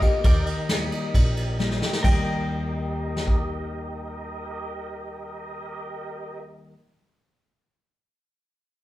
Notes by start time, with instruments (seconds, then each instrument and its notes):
Already playing: steel-string acoustic guitar D3, tonewheel organ A#3 F4 A#4 D6, upright piano D#5, pedal steel guitar F5
0.02 upright piano G4, kick, ride
0.24 upright bass D#2, steel-string acoustic guitar D#3, tonewheel organ D#4 G4 A#4 D#5, pedal steel guitar A#4 D5 G5, kick, ride
0.46 pedal steel guitar D#5, ride
0.69 steel-string acoustic guitar G3 A#3 D#4 G4, snare, ride
0.92 ride
1.14 upright bass A#1, steel-string acoustic guitar A#2, kick, ride
1.37 ride
1.59 steel-string acoustic guitar G3 A#3 D#4 G4, snare
1.71 snare
1.81 steel-string acoustic guitar D#4 G4, snare
1.93 snare
2.03 upright bass D#2, steel-string acoustic guitar D#3 G3 A#3 D#4 G4, tonewheel organ G4 A#4 D#5, pedal steel guitar A#4 D#5 G5, upright piano G5, kick, crash
3.16 snare
3.27 kick